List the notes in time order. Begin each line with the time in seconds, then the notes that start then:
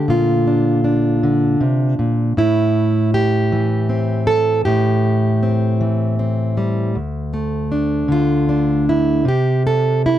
Already playing: D3 A3
0.08 A#2 F4
0.47 D4
0.84 D4
1.23 D3
1.61 C3
1.99 A#2
2.37 A2 E4
3.14 G4
3.52 E3
3.89 C4
4.27 A4
4.65 A2 G4
5.43 C4
5.81 E3
6.19 C4
6.57 G3
6.95 D2
7.34 A3
7.72 D4
8.08 D3 F4
8.49 D4
8.89 E4
9.25 C3 G4
9.67 A4
10.06 E4